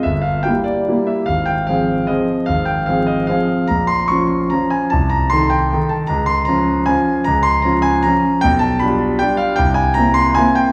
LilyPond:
\new Staff \with { instrumentName = "Grand piano" } { \time 3/4 \key f \minor \tempo 4 = 151 << { e''8 f''8 g''8 d''4 e''8 | f''8 g''8 f''4 ees''4 | f''8 g''8 f''8 ees''8 f''4 | bes''8 c'''8 des'''4 bes''8 aes''8 |
a''8 bes''8 c'''8 g''4 a''8 | bes''8 c'''8 bes''4 aes''4 | bes''8 c'''8 bes''8 aes''8 bes''4 | g''8 a''8 b''4 g''8 f''8 |
g''8 aes''8 bes''8 c'''8 aes''8 g''8 | } \\ { g,,4 <g bes e'>4 <g bes e'>4 | aes,,4 <f c' aes'>4 <f c' aes'>4 | aes,,4 <f c' aes'>4 <f c' aes'>4 | bes,,4 <f des' f'>4 <f des' f'>4 |
c,4 <ees ees' a'>4 <ees ees' a'>4 | des,4 <f des' f'>4 <f des' f'>4 | des,4 <f des' f'>4 <f des' f'>4 | b,,4 <g d' f'>4 <g d' f'>4 |
c,4 <bes c' e'>4 <bes c' e'>4 | } >> }